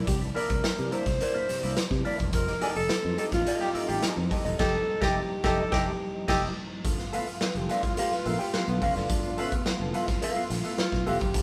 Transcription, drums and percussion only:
0.07 kick loud
0.07 closed hi-hat medium
0.22 closed hi-hat soft
0.36 closed hi-hat medium
0.49 kick medium
0.49 closed hi-hat soft
0.64 snare loud
0.64 closed hi-hat medium
0.78 closed hi-hat soft
0.92 closed hi-hat medium
1.06 kick medium
1.06 snare soft
1.06 closed hi-hat soft
1.21 closed hi-hat medium
1.49 snare soft
1.49 closed hi-hat medium
1.63 closed hi-hat medium
1.77 snare loud
1.77 closed hi-hat medium
1.91 kick medium
1.91 snare soft
2.05 open hi-hat medium
2.19 kick medium
2.19 closed hi-hat soft
2.33 kick loud
2.33 closed hi-hat medium
2.47 snare soft
2.47 closed hi-hat soft
2.61 closed hi-hat medium
2.75 closed hi-hat medium
2.89 snare loud
2.89 closed hi-hat medium
3.18 closed hi-hat medium
3.32 kick medium
3.32 snare soft
3.32 closed hi-hat medium
3.46 closed hi-hat medium
3.61 snare soft
3.75 closed hi-hat medium
3.89 closed hi-hat soft
4.02 snare loud
4.02 closed hi-hat medium
4.31 kick medium
4.31 open hi-hat medium
4.46 closed hi-hat soft
4.59 kick loud
4.59 snare medium
4.59 crash medium
5.02 kick loud
5.02 snare loud
5.44 kick loud
5.44 snare loud
5.72 kick loud
5.72 snare loud
6.28 kick loud
6.28 snare loud
6.28 crash medium
6.85 kick loud
6.85 closed hi-hat medium
6.99 snare soft
6.99 closed hi-hat soft
7.13 closed hi-hat medium
7.27 closed hi-hat soft
7.41 snare loud
7.55 closed hi-hat soft
7.69 snare soft
7.69 closed hi-hat medium
7.83 kick medium
7.83 closed hi-hat soft
7.97 closed hi-hat loud
8.11 snare soft
8.26 closed hi-hat medium
8.40 closed hi-hat soft
8.54 snare loud
8.68 closed hi-hat soft
8.82 kick medium
8.82 open hi-hat medium
8.96 snare soft
8.96 closed hi-hat soft
9.09 kick loud
9.09 closed hi-hat loud
9.24 closed hi-hat soft
9.38 closed hi-hat medium
9.52 kick medium
9.52 closed hi-hat soft
9.66 snare loud
9.94 closed hi-hat medium
10.08 kick medium
10.08 snare soft
10.08 closed hi-hat medium
10.22 closed hi-hat medium
10.37 closed hi-hat soft
10.50 snare soft
10.50 closed hi-hat medium
10.64 closed hi-hat soft
10.78 snare loud
10.92 kick medium
10.92 snare soft
11.07 open hi-hat medium
11.21 kick medium
11.21 closed hi-hat soft
11.34 kick loud
11.34 closed hi-hat loud

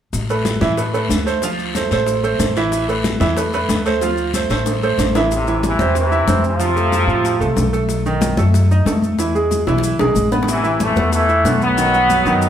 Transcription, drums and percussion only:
0.13 high bongo medium
0.13 high conga soft
0.13 long guiro medium
0.13 maracas medium
0.29 high bongo soft
0.29 high conga soft
0.29 maracas soft
0.45 high bongo medium
0.45 high conga medium
0.45 short guiro medium
0.45 maracas medium
0.61 high conga medium
0.61 short guiro medium
0.61 maracas soft
0.77 high bongo medium
0.77 high conga soft
0.77 long guiro medium
0.77 maracas medium
0.94 high bongo soft
0.94 high conga soft
0.94 maracas soft
1.09 high bongo soft
1.09 low bongo medium
1.09 high conga medium
1.09 short guiro medium
1.09 maracas medium
1.27 short guiro medium
1.27 maracas soft
1.42 high bongo medium
1.42 high conga soft
1.42 long guiro medium
1.42 maracas medium
1.58 high bongo soft
1.58 high conga soft
1.58 maracas soft
1.75 high bongo soft
1.75 high conga medium
1.75 short guiro medium
1.75 maracas medium
1.90 high bongo soft
1.90 short guiro medium
1.90 maracas soft
2.06 high bongo medium
2.06 high conga soft
2.06 long guiro medium
2.06 maracas medium
2.23 high bongo soft
2.23 high conga soft
2.23 maracas soft
2.40 high bongo soft
2.40 low bongo medium
2.40 high conga medium
2.40 short guiro medium
2.40 maracas medium
2.56 short guiro medium
2.56 maracas soft
2.72 high bongo medium
2.72 high conga soft
2.72 long guiro medium
2.72 maracas medium
2.88 high bongo soft
2.88 high conga soft
2.88 maracas soft
3.04 high bongo medium
3.04 high conga medium
3.04 short guiro medium
3.04 maracas medium
3.20 high bongo soft
3.20 high conga medium
3.20 short guiro medium
3.20 maracas soft
3.37 high bongo medium
3.37 high conga soft
3.37 long guiro medium
3.37 maracas medium
3.53 high conga soft
3.53 maracas soft
3.69 high bongo soft
3.69 low bongo medium
3.69 high conga medium
3.69 short guiro medium
3.69 maracas medium
3.86 short guiro medium
3.86 maracas soft
4.01 high bongo medium
4.01 high conga soft
4.01 long guiro medium
4.01 maracas medium
4.18 high conga soft
4.18 maracas soft
4.34 high conga medium
4.34 short guiro medium
4.34 maracas medium
4.50 low bongo medium
4.50 short guiro medium
4.50 maracas soft
4.66 low bongo medium
4.66 high conga soft
4.66 long guiro medium
4.66 maracas medium
4.83 high conga soft
4.83 maracas soft
4.99 low bongo medium
4.99 high conga medium
4.99 short guiro medium
4.99 maracas medium
5.15 low bongo medium
5.15 short guiro medium
5.15 maracas soft
5.31 high bongo medium
5.31 high conga soft
5.31 maracas medium
5.47 high bongo soft
5.47 high conga soft
5.47 maracas soft
5.63 high bongo medium
5.63 high conga medium
5.63 maracas medium
5.79 high conga medium
5.79 maracas soft
5.95 high bongo medium
5.95 high conga soft
5.95 maracas medium
6.12 high bongo soft
6.12 high conga soft
6.12 maracas soft
6.28 high bongo soft
6.28 low bongo medium
6.28 high conga medium
6.28 maracas medium
6.44 maracas soft
6.60 high bongo medium
6.60 high conga soft
6.60 maracas medium
6.76 high bongo soft
6.76 high conga soft
6.76 maracas soft
6.92 high bongo medium
6.92 high conga medium
6.92 maracas medium
7.09 high bongo soft
7.09 maracas soft
7.24 high bongo medium
7.24 high conga soft
7.24 maracas medium
7.40 high bongo soft
7.40 high conga soft
7.40 maracas soft
7.56 high bongo soft
7.56 low bongo medium
7.56 high conga medium
7.56 maracas medium
7.73 maracas soft
7.89 high bongo medium
7.89 high conga soft
7.89 maracas medium
8.05 high bongo soft
8.05 high conga soft
8.05 maracas soft
8.21 high bongo medium
8.21 high conga loud
8.21 maracas medium
8.37 high conga medium
8.37 maracas soft
8.53 high bongo medium
8.53 high conga soft
8.53 maracas medium
8.70 high bongo soft
8.70 high conga soft
8.70 maracas soft
8.86 high bongo soft
8.86 low bongo medium
8.86 high conga medium
8.86 maracas medium
9.02 high conga medium
9.02 maracas soft
9.19 high bongo medium
9.19 high conga soft
9.19 maracas medium
9.34 high bongo soft
9.34 high conga soft
9.34 maracas soft
9.51 high bongo medium
9.51 high conga medium
9.51 maracas medium
9.67 high bongo medium
9.67 maracas soft
9.78 high bongo medium
9.83 high conga soft
9.83 maracas medium
9.99 low bongo medium
9.99 high conga soft
9.99 maracas soft
10.16 high conga medium
10.16 maracas medium
10.32 low bongo medium
10.32 high conga medium
10.32 maracas soft
10.43 low bongo medium
10.48 high bongo medium
10.48 high conga soft
10.48 maracas medium
10.64 high bongo soft
10.64 high conga soft
10.64 maracas soft
10.80 high bongo medium
10.80 high conga medium
10.80 maracas medium
10.96 high conga medium
10.96 maracas soft
11.12 high bongo medium
11.12 high conga soft
11.12 maracas medium
11.29 high conga soft
11.29 maracas soft
11.45 high bongo soft
11.45 low bongo medium
11.45 high conga medium
11.45 maracas medium
11.62 maracas soft
11.78 high bongo medium
11.78 high conga soft
11.78 maracas medium
11.94 high conga soft
11.94 maracas soft
12.10 high bongo medium
12.10 high conga medium
12.10 maracas medium
12.26 high bongo soft
12.26 maracas soft
12.42 high bongo medium
12.42 high conga soft
12.42 maracas medium

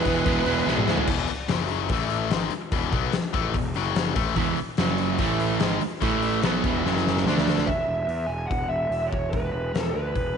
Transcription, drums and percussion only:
0.05 kick medium
0.05 open hi-hat medium
0.26 kick loud
0.26 open hi-hat medium
0.46 open hi-hat medium
0.68 snare medium
0.77 mid tom medium
0.88 snare medium
0.97 floor tom medium
1.07 kick loud
1.07 crash loud
1.18 snare soft
1.28 open hi-hat medium
1.48 snare loud
1.48 open hi-hat medium
1.69 open hi-hat medium
1.89 kick loud
1.89 open hi-hat medium
2.10 open hi-hat medium
2.30 snare loud
2.30 open hi-hat medium
2.50 open hi-hat medium
2.72 kick loud
2.72 open hi-hat medium
2.93 kick loud
2.93 open hi-hat medium
3.12 snare loud
3.12 open hi-hat medium
3.34 kick loud
3.34 open hi-hat medium
3.54 kick medium
3.54 open hi-hat medium
3.74 open hi-hat medium
3.95 snare loud
3.95 open hi-hat medium
4.16 kick loud
4.16 open hi-hat medium
4.36 kick medium
4.36 open hi-hat medium
4.56 open hi-hat medium
4.77 snare loud
4.77 open hi-hat medium
4.98 open hi-hat medium
5.18 kick loud
5.18 open hi-hat medium
5.40 open hi-hat medium
5.60 snare loud
5.60 open hi-hat medium
5.81 open hi-hat medium
6.02 kick medium
6.02 open hi-hat medium
6.22 open hi-hat medium
6.43 snare loud
6.43 open hi-hat medium
6.64 kick loud
6.64 open hi-hat medium
6.86 snare medium
6.97 snare medium
7.07 snare medium
7.17 snare medium
7.27 snare medium
7.38 snare medium
7.48 snare medium
7.58 snare medium
7.67 kick medium
7.67 open hi-hat soft
8.09 open hi-hat soft
8.51 kick medium
8.51 open hi-hat soft
8.92 open hi-hat soft
9.12 kick medium
9.33 kick medium
9.33 open hi-hat soft
9.75 snare loud
9.75 open hi-hat soft
10.15 kick medium
10.15 open hi-hat soft

